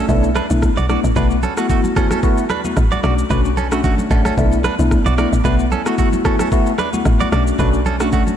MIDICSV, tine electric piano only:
0, 0, Header, 1, 2, 480
1, 0, Start_track
1, 0, Tempo, 535714
1, 1040, Time_signature, 4, 2, 24, 8
1, 7497, End_track
2, 0, Start_track
2, 0, Title_t, "Tine electric piano"
2, 0, Program_c, 0, 4
2, 77, Note_on_c, 0, 57, 92
2, 79, Note_on_c, 0, 59, 88
2, 80, Note_on_c, 0, 62, 85
2, 82, Note_on_c, 0, 64, 105
2, 256, Note_off_c, 0, 57, 0
2, 257, Note_off_c, 0, 59, 0
2, 258, Note_off_c, 0, 62, 0
2, 258, Note_off_c, 0, 64, 0
2, 447, Note_on_c, 0, 57, 76
2, 449, Note_on_c, 0, 59, 67
2, 452, Note_on_c, 0, 62, 67
2, 453, Note_on_c, 0, 64, 81
2, 613, Note_off_c, 0, 57, 0
2, 614, Note_off_c, 0, 59, 0
2, 616, Note_off_c, 0, 62, 0
2, 616, Note_off_c, 0, 64, 0
2, 797, Note_on_c, 0, 57, 73
2, 798, Note_on_c, 0, 59, 67
2, 800, Note_on_c, 0, 62, 70
2, 802, Note_on_c, 0, 64, 84
2, 976, Note_off_c, 0, 57, 0
2, 977, Note_off_c, 0, 59, 0
2, 978, Note_off_c, 0, 62, 0
2, 979, Note_off_c, 0, 64, 0
2, 1038, Note_on_c, 0, 57, 94
2, 1040, Note_on_c, 0, 59, 83
2, 1040, Note_on_c, 0, 64, 82
2, 1043, Note_on_c, 0, 66, 98
2, 1217, Note_off_c, 0, 57, 0
2, 1217, Note_off_c, 0, 59, 0
2, 1218, Note_off_c, 0, 64, 0
2, 1219, Note_off_c, 0, 66, 0
2, 1410, Note_on_c, 0, 57, 74
2, 1411, Note_on_c, 0, 59, 67
2, 1413, Note_on_c, 0, 64, 69
2, 1415, Note_on_c, 0, 66, 82
2, 1733, Note_off_c, 0, 57, 0
2, 1734, Note_off_c, 0, 59, 0
2, 1735, Note_off_c, 0, 64, 0
2, 1736, Note_off_c, 0, 66, 0
2, 1759, Note_on_c, 0, 57, 80
2, 1760, Note_on_c, 0, 59, 69
2, 1762, Note_on_c, 0, 64, 68
2, 1764, Note_on_c, 0, 66, 83
2, 1982, Note_off_c, 0, 57, 0
2, 1983, Note_off_c, 0, 59, 0
2, 1984, Note_off_c, 0, 64, 0
2, 1985, Note_off_c, 0, 66, 0
2, 1998, Note_on_c, 0, 57, 93
2, 2000, Note_on_c, 0, 59, 82
2, 2002, Note_on_c, 0, 64, 82
2, 2004, Note_on_c, 0, 66, 101
2, 2177, Note_off_c, 0, 57, 0
2, 2177, Note_off_c, 0, 59, 0
2, 2178, Note_off_c, 0, 64, 0
2, 2180, Note_off_c, 0, 66, 0
2, 2369, Note_on_c, 0, 57, 73
2, 2371, Note_on_c, 0, 59, 68
2, 2372, Note_on_c, 0, 64, 69
2, 2375, Note_on_c, 0, 66, 84
2, 2534, Note_off_c, 0, 57, 0
2, 2535, Note_off_c, 0, 59, 0
2, 2536, Note_off_c, 0, 64, 0
2, 2537, Note_off_c, 0, 66, 0
2, 2717, Note_on_c, 0, 57, 75
2, 2719, Note_on_c, 0, 61, 66
2, 2721, Note_on_c, 0, 62, 66
2, 2722, Note_on_c, 0, 66, 80
2, 2896, Note_off_c, 0, 57, 0
2, 2897, Note_off_c, 0, 61, 0
2, 2898, Note_off_c, 0, 62, 0
2, 2899, Note_off_c, 0, 66, 0
2, 2959, Note_on_c, 0, 57, 91
2, 2960, Note_on_c, 0, 61, 85
2, 2961, Note_on_c, 0, 62, 82
2, 2962, Note_on_c, 0, 66, 101
2, 3137, Note_off_c, 0, 57, 0
2, 3137, Note_off_c, 0, 61, 0
2, 3138, Note_off_c, 0, 62, 0
2, 3139, Note_off_c, 0, 66, 0
2, 3329, Note_on_c, 0, 57, 73
2, 3331, Note_on_c, 0, 61, 67
2, 3332, Note_on_c, 0, 62, 68
2, 3334, Note_on_c, 0, 66, 83
2, 3653, Note_off_c, 0, 57, 0
2, 3654, Note_off_c, 0, 61, 0
2, 3655, Note_off_c, 0, 62, 0
2, 3655, Note_off_c, 0, 66, 0
2, 3679, Note_on_c, 0, 57, 75
2, 3681, Note_on_c, 0, 61, 69
2, 3682, Note_on_c, 0, 62, 69
2, 3684, Note_on_c, 0, 66, 86
2, 3902, Note_off_c, 0, 57, 0
2, 3903, Note_off_c, 0, 61, 0
2, 3904, Note_off_c, 0, 62, 0
2, 3905, Note_off_c, 0, 66, 0
2, 3919, Note_on_c, 0, 57, 86
2, 3920, Note_on_c, 0, 59, 85
2, 3922, Note_on_c, 0, 62, 85
2, 3924, Note_on_c, 0, 64, 100
2, 4097, Note_off_c, 0, 57, 0
2, 4097, Note_off_c, 0, 59, 0
2, 4099, Note_off_c, 0, 62, 0
2, 4099, Note_off_c, 0, 64, 0
2, 4290, Note_on_c, 0, 57, 77
2, 4292, Note_on_c, 0, 59, 71
2, 4293, Note_on_c, 0, 62, 67
2, 4296, Note_on_c, 0, 64, 83
2, 4455, Note_off_c, 0, 57, 0
2, 4456, Note_off_c, 0, 59, 0
2, 4456, Note_off_c, 0, 62, 0
2, 4458, Note_off_c, 0, 64, 0
2, 4640, Note_on_c, 0, 57, 72
2, 4643, Note_on_c, 0, 59, 66
2, 4644, Note_on_c, 0, 62, 66
2, 4646, Note_on_c, 0, 64, 83
2, 4818, Note_off_c, 0, 57, 0
2, 4819, Note_off_c, 0, 59, 0
2, 4819, Note_off_c, 0, 62, 0
2, 4820, Note_off_c, 0, 64, 0
2, 4881, Note_on_c, 0, 57, 90
2, 4883, Note_on_c, 0, 59, 80
2, 4885, Note_on_c, 0, 64, 79
2, 4887, Note_on_c, 0, 66, 101
2, 5058, Note_off_c, 0, 57, 0
2, 5059, Note_off_c, 0, 59, 0
2, 5060, Note_off_c, 0, 64, 0
2, 5061, Note_off_c, 0, 66, 0
2, 5254, Note_on_c, 0, 57, 72
2, 5255, Note_on_c, 0, 59, 67
2, 5257, Note_on_c, 0, 64, 70
2, 5259, Note_on_c, 0, 66, 82
2, 5575, Note_off_c, 0, 57, 0
2, 5576, Note_off_c, 0, 59, 0
2, 5577, Note_off_c, 0, 64, 0
2, 5578, Note_off_c, 0, 66, 0
2, 5600, Note_on_c, 0, 57, 75
2, 5602, Note_on_c, 0, 59, 67
2, 5605, Note_on_c, 0, 64, 69
2, 5606, Note_on_c, 0, 66, 88
2, 5823, Note_off_c, 0, 57, 0
2, 5824, Note_off_c, 0, 59, 0
2, 5825, Note_off_c, 0, 64, 0
2, 5826, Note_off_c, 0, 66, 0
2, 5840, Note_on_c, 0, 57, 87
2, 5843, Note_on_c, 0, 59, 86
2, 5844, Note_on_c, 0, 64, 85
2, 5847, Note_on_c, 0, 66, 98
2, 6018, Note_off_c, 0, 57, 0
2, 6019, Note_off_c, 0, 59, 0
2, 6019, Note_off_c, 0, 64, 0
2, 6021, Note_off_c, 0, 66, 0
2, 6210, Note_on_c, 0, 57, 73
2, 6213, Note_on_c, 0, 59, 70
2, 6213, Note_on_c, 0, 64, 67
2, 6216, Note_on_c, 0, 66, 84
2, 6534, Note_off_c, 0, 57, 0
2, 6535, Note_off_c, 0, 59, 0
2, 6535, Note_off_c, 0, 64, 0
2, 6536, Note_off_c, 0, 66, 0
2, 6559, Note_on_c, 0, 57, 72
2, 6561, Note_on_c, 0, 61, 67
2, 6564, Note_on_c, 0, 62, 65
2, 6564, Note_on_c, 0, 66, 81
2, 6782, Note_off_c, 0, 57, 0
2, 6783, Note_off_c, 0, 61, 0
2, 6785, Note_off_c, 0, 62, 0
2, 6785, Note_off_c, 0, 66, 0
2, 6798, Note_on_c, 0, 57, 89
2, 6801, Note_on_c, 0, 61, 80
2, 6803, Note_on_c, 0, 62, 81
2, 6805, Note_on_c, 0, 66, 95
2, 6977, Note_off_c, 0, 57, 0
2, 6978, Note_off_c, 0, 61, 0
2, 6979, Note_off_c, 0, 62, 0
2, 6980, Note_off_c, 0, 66, 0
2, 7172, Note_on_c, 0, 57, 74
2, 7173, Note_on_c, 0, 61, 68
2, 7174, Note_on_c, 0, 62, 67
2, 7177, Note_on_c, 0, 66, 83
2, 7494, Note_off_c, 0, 57, 0
2, 7495, Note_off_c, 0, 61, 0
2, 7495, Note_off_c, 0, 62, 0
2, 7497, Note_off_c, 0, 66, 0
2, 7497, End_track
0, 0, End_of_file